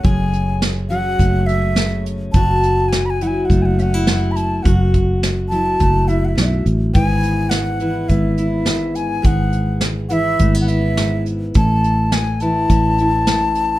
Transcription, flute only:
0.05 G#5
0.89 F#5
1.46 E5
2.32 A5
2.89 G#5
3.06 B5
3.10 G#5
3.23 F#5
3.27 G#5
3.45 F#5
3.62 F#5 G#5
3.79 E5 F#5
4.32 B5
4.36 A5
4.63 F#5
5.49 A5
6.08 E5
6.25 E5 F#5
6.42 D5 E5
6.94 G#5
7.50 F#5
8.09 E5
8.96 G#5
9.26 F#5
10.09 E5 F#5
10.61 F#5
10.68 E5
11.57 A5
12.13 G#5
12.41 A5

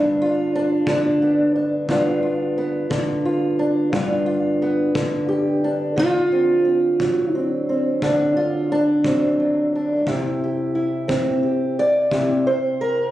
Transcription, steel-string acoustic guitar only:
Already playing: G2 D3 B3 D4 F4
0.22 F4
0.55 D4
0.87 D3 D4
1.22 B3
1.56 D4
1.89 G2 B3 D4 F4
2.23 F4
2.58 B3
2.90 D3
3.25 F4
3.59 D4
3.92 G2 B3 D4 F4
4.26 F4
4.62 B3
4.95 D3
5.29 G4
5.64 D4
5.96 D3 F4
6.32 C4
6.65 C4
7.00 F#3
7.32 C4 D4
7.69 C4
8.03 D3 D4
8.37 F4
8.72 D4
9.05 F#3 C4
9.40 F#3
9.75 D4
10.07 C3 E4 G4
10.44 G4
10.75 E4
11.08 C4
11.43 G4
11.79 D5
12.11 C3 E4 G4
12.47 C5
12.81 A#4

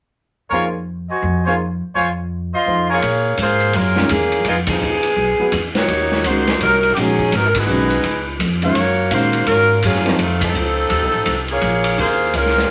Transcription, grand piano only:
0.52 A#3 D#4 G#4 C5
1.47 A#3 D#4 G#4 C5
2.67 D#4 F4 A4 C5
3.97 D#3 G#3 C#4 F4
5.40 F#3 B3 E4 G#4
6.25 D#3 G#3 C#4 F#4
6.96 D#3 G#3 C#4 F#4
7.69 D#3 G#3 C#4 F#4
8.62 D#3 G#3 C#4 F4
9.11 D#3 G#3 C#4 F5
10.05 F3 A3 C4 D#4

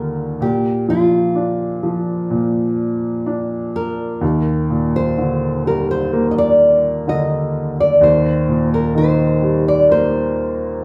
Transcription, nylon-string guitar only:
Already playing: A#4
0.42 G4
0.90 F4
3.76 A#4
4.96 C5
5.67 A#4
5.91 C5
6.31 D#5
6.38 D5
7.09 D#5
7.80 D5
8.03 C5
8.74 A#4
8.98 C5
9.68 D5
9.92 C5

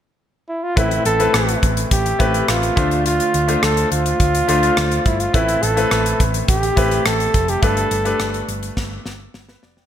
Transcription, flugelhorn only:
0.49 E4
0.63 F4
0.78 E4
1.06 A4
1.92 G4
2.49 F4
3.06 F4
3.63 A4
3.92 F4
5.06 E4
5.20 F4
5.34 E4
5.63 A4
6.49 G4
7.06 A4
7.50 G4
7.63 A4

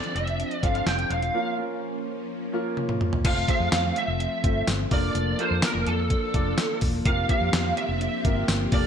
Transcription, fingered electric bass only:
0.15 F1
0.63 G1
0.86 F1
1.10 E1
3.25 F1
3.60 F2
3.72 F2
4.08 F1
4.44 G1
4.67 G1
4.91 F1
5.15 F1
5.51 F2
5.75 F1
5.86 F2
6.34 F1
6.82 E1
7.05 F1
7.41 F2
7.53 F2
7.89 F1
8.25 G1
8.48 G1
8.72 F1

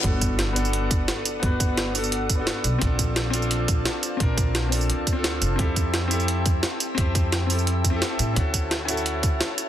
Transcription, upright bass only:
0.04 G1
1.43 G1
2.64 B1
2.82 A#1
4.20 A#1
4.90 D2
5.42 F1
5.59 F2
6.98 F2
8.19 A2
8.36 D2

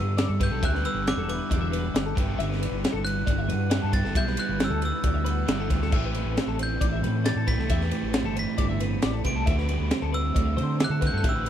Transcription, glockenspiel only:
Already playing: E6
0.43 G6
0.65 F#6
0.86 E6
1.08 D6
1.30 D6
3.05 F#6
3.94 A6
4.17 G6
4.39 F#6
4.64 E6
4.85 E6
6.63 G6
7.25 A6
7.48 B6
8.39 B6
9.26 D7
10.14 E6
10.84 F#6
11.07 G6
11.18 F#6
11.29 E6

